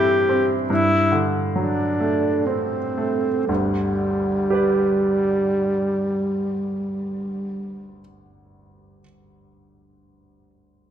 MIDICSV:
0, 0, Header, 1, 3, 480
1, 0, Start_track
1, 0, Key_signature, 1, "major"
1, 0, Tempo, 784314
1, 425, Time_signature, 3, 2, 24, 8
1, 425, Tempo, 847458
1, 905, Tempo, 921659
1, 1385, Tempo, 1003344
1, 4265, Tempo, 1020408
1, 5405, End_track
2, 0, Start_track
2, 0, Title_t, "Alto saxophone"
2, 0, Program_c, 0, 65
2, 0, Note_on_c, 0, 67, 45
2, 320, Note_off_c, 0, 67, 0
2, 424, Note_on_c, 0, 64, 57
2, 726, Note_off_c, 0, 64, 0
2, 904, Note_on_c, 0, 62, 36
2, 1383, Note_on_c, 0, 60, 34
2, 1390, Note_off_c, 0, 62, 0
2, 1864, Note_off_c, 0, 60, 0
2, 1867, Note_on_c, 0, 55, 41
2, 4020, Note_off_c, 0, 55, 0
2, 5405, End_track
3, 0, Start_track
3, 0, Title_t, "Grand piano"
3, 0, Program_c, 1, 0
3, 0, Control_c, 1, 64, 127
3, 0, Note_on_c, 1, 43, 47
3, 0, Note_on_c, 1, 52, 35
3, 0, Note_on_c, 1, 55, 31
3, 0, Note_on_c, 1, 60, 36
3, 0, Note_on_c, 1, 64, 31
3, 86, Note_off_c, 1, 60, 0
3, 179, Note_on_c, 1, 60, 31
3, 330, Note_off_c, 1, 64, 0
3, 399, Note_off_c, 1, 43, 0
3, 423, Note_off_c, 1, 60, 0
3, 427, Note_on_c, 1, 43, 35
3, 437, Control_c, 1, 64, 0
3, 441, Note_off_c, 1, 52, 0
3, 443, Note_off_c, 1, 55, 0
3, 557, Control_c, 1, 64, 127
3, 665, Note_on_c, 1, 50, 28
3, 912, Note_on_c, 1, 54, 26
3, 1048, Note_off_c, 1, 50, 0
3, 1146, Note_on_c, 1, 57, 25
3, 1289, Note_off_c, 1, 54, 0
3, 1387, Note_on_c, 1, 60, 22
3, 1530, Note_off_c, 1, 57, 0
3, 1630, Note_on_c, 1, 57, 22
3, 1776, Note_off_c, 1, 60, 0
3, 1853, Note_off_c, 1, 43, 0
3, 1874, Note_off_c, 1, 57, 0
3, 1875, Note_on_c, 1, 31, 23
3, 1875, Note_on_c, 1, 38, 27
3, 1885, Control_c, 1, 64, 0
3, 1986, Control_c, 1, 64, 127
3, 2361, Note_on_c, 1, 67, 20
3, 2370, Note_on_c, 1, 71, 19
3, 2380, Note_on_c, 1, 74, 21
3, 4028, Note_off_c, 1, 31, 0
3, 4028, Note_off_c, 1, 38, 0
3, 4510, Note_off_c, 1, 67, 0
3, 4518, Note_off_c, 1, 71, 0
3, 4529, Note_off_c, 1, 74, 0
3, 5405, End_track
0, 0, End_of_file